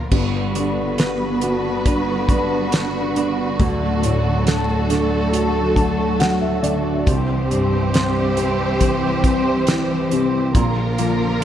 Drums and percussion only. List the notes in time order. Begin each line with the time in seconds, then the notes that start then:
0.11 kick, crash
0.55 closed hi-hat
0.98 snare, closed hi-hat
1.41 closed hi-hat
1.86 kick, closed hi-hat
2.29 kick, closed hi-hat
2.72 snare, closed hi-hat
3.16 closed hi-hat
3.60 kick, closed hi-hat
4.03 closed hi-hat
4.47 snare, closed hi-hat
4.90 snare, closed hi-hat
5.33 closed hi-hat
5.76 kick, closed hi-hat
6.20 snare, closed hi-hat
6.64 closed hi-hat
7.07 kick, closed hi-hat
7.51 closed hi-hat
7.94 snare, closed hi-hat
8.37 closed hi-hat
8.81 kick, closed hi-hat
9.24 kick, closed hi-hat
9.67 snare, closed hi-hat
10.11 closed hi-hat
10.55 kick, closed hi-hat
10.98 closed hi-hat